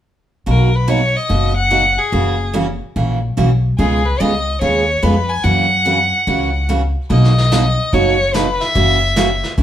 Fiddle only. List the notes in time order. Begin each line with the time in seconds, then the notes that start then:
0.49 A#4
0.75 B4
0.89 C#5
1.16 D#5
1.56 F#5
1.98 G#4
3.79 G#4
4.05 B4
4.20 D#5
4.61 C#5
5.03 B4
5.29 G#5
5.44 F#5
7.10 D#5
7.93 C#5
8.34 B4
8.61 E5